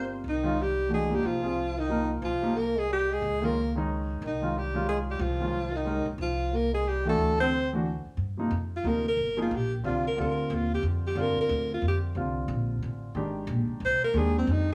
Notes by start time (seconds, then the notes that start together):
Already playing: G1 G3 C4 F4 A#4 C5
0.24 C2 D#3
0.29 D#4
0.43 D#3 G#3 C#4 F4
0.60 G3 G4
0.89 E3 A3 D4 F#4
0.93 G#3 G#4
1.09 F3 G3 A#3 D#4 G4
1.15 G4
1.23 C2 F3 F4
1.41 G3 C4 F4 G#4
1.79 D#3 D#4
1.89 F3 A#3 D#4 A#4
2.22 C2 F3 F4
2.42 F3 A#3 D#4 G4
2.55 A#3 A#4
2.76 G#3 G#4
2.90 G3 G4
3.10 G#3 G#4
3.22 C#2
3.42 D#3 G#3 A#3 C#4 F4 A#4
3.75 D#3 G#3 C#4 D#4
4.22 C2 D#3
4.27 D#4
4.42 D#3 G#3 C#4 F4
4.57 G3 G4
4.74 D#3 G#3 C#4 F4
4.89 G#3 G#4
5.09 G3 G4
5.19 C2 F3 F4
5.40 D#3 G#3 C#4 F4
5.73 D#3 D#4
5.85 G#3 C#4 G4 A#4
6.05 C#2
6.18 C2 F3 F4
6.53 A#3 A#4
6.73 G#3 G#4
6.88 G3 G4
7.05 E3 A3 D4 F#4
7.09 A4
7.18 D2
7.40 C4 C5
7.73 E3 A3 D4 F#4
8.05 muted upright bass stroke
8.17 G2
8.37 C3 F3 A#3 D#4
8.51 F2
8.76 F4
8.83 D2 C3 F3 A#3 D#4
8.88 A#4
9.08 A#4
9.17 G1
9.37 F3 A#3 D#4 G#4
9.42 F4
9.51 A#1
9.56 G4
9.83 C2 D3 G3 C4 F4
10.07 A#4
10.16 D2 D3 G3 C4 F4
10.21 A#4
10.50 D#2
10.54 F4
10.74 G4
10.83 F2
11.07 G4
11.15 G2 D3 G3 C4 F4
11.21 A#4
11.37 muted upright bass stroke
11.41 A#4
11.49 D2
11.74 F4
11.82 F2
11.88 G4
12.15 C2 D3 G3 C4 F4
12.48 A#1
12.83 A1
13.15 G#1 D#3 G#3 D4 G4
13.47 A#1
13.67 muted upright bass stroke
13.80 C2
13.85 C5
14.01 A#4, muted upright bass stroke
14.14 D#2 D#3 G#3 D4 G4 G#4
14.38 C4
14.47 F2
14.52 D#4